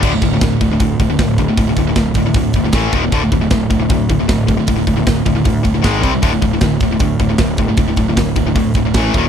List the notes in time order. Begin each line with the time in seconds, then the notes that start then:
0.02 D1 D2 A2 D3, kick, crash
0.15 D2 A2
0.22 D1 D2 A2, kick, open hi-hat
0.33 D2 A2
0.41 D1 D2 A2, kick, snare, open hi-hat
0.61 D1 D2 A2, kick, open hi-hat
0.71 D2 A2
0.79 D2 A2, kick, open hi-hat
1.00 D1 D2 A2, kick, open hi-hat
1.10 D2 A2
1.19 D1 D2 A2, kick, snare, open hi-hat
1.38 D2 A2, kick, open hi-hat
1.48 D2 A2
1.57 D1 D2 A2, kick, open hi-hat
1.67 D2 A2
1.76 D1 D2 A2, kick, open hi-hat
1.87 D2 A2
1.96 D1 D2 A2, kick, snare, open hi-hat
2.14 D1 D2 A2, kick, open hi-hat
2.26 D2 A2
2.34 D2 A2, kick, open hi-hat
2.53 D1 D2 A2, kick, open hi-hat
2.64 D2 A2
2.72 A1 A2 E3 A3, kick, snare, open hi-hat
2.92 D#1 D#2 A#2 D#3, kick, open hi-hat
3.03 D#2 A#2
3.12 D1 D2 A2 D3, kick, open hi-hat
3.22 D2 A2
3.32 D1 D2 A2, kick, open hi-hat
3.42 D2 A2
3.50 D1 D2 A2, kick, snare, open hi-hat
3.70 D1 D2 A2, kick, open hi-hat
3.80 D2 A2
3.89 D2 A2, kick, open hi-hat
4.09 D1 D2 A2, kick, open hi-hat
4.19 D2 A2
4.29 D1 D2 A2, kick, snare, open hi-hat
4.48 D2 A2, kick, open hi-hat
4.59 D2 A2
4.67 D1 D2 A2, kick, open hi-hat
4.79 D2 A2
4.87 D1 D2 A2, kick, open hi-hat
4.96 D2 A2
5.07 D1 D2 A2, kick, snare, open hi-hat
5.26 D1 D2 A2, kick, open hi-hat
5.35 D2 A2
5.45 D2 A2, kick, open hi-hat
5.64 D1 D2 A2, kick, open hi-hat
5.74 D2 A2
5.84 G#1 G#2 D#3 G#3, kick, snare, open hi-hat
6.03 C2 C3 G3 C4, kick, open hi-hat
6.14 C3 G3
6.22 D1 D2 A2 D3, kick, open hi-hat
6.33 D2 A2
6.42 D1 D2 A2, kick, open hi-hat
6.53 D2 A2
6.61 D1 D2 A2, kick, snare, open hi-hat
6.80 D1 D2 A2, kick, open hi-hat
6.91 D2 A2
6.99 D2 A2, kick, open hi-hat
7.20 D1 D2 A2, kick, open hi-hat
7.29 D2 A2
7.38 D1 D2 A2, kick, snare, open hi-hat
7.57 D2 A2, kick, open hi-hat
7.69 D2 A2
7.77 D1 D2 A2, kick, open hi-hat
7.88 D2 A2
7.97 D1 D2 A2, kick, open hi-hat
8.08 D2 A2
8.16 D1 D2 A2, kick, snare, open hi-hat
8.36 D1 D2 A2, kick, open hi-hat
8.47 D2 A2
8.55 D2 A2, kick, open hi-hat
8.74 D1 D2 A2, kick, open hi-hat
8.85 D2 A2
8.94 A1 A2 E3 A3, kick, snare, open hi-hat
9.14 D#1 D#2 A#2 D#3, kick, open hi-hat
9.25 D#2 A#2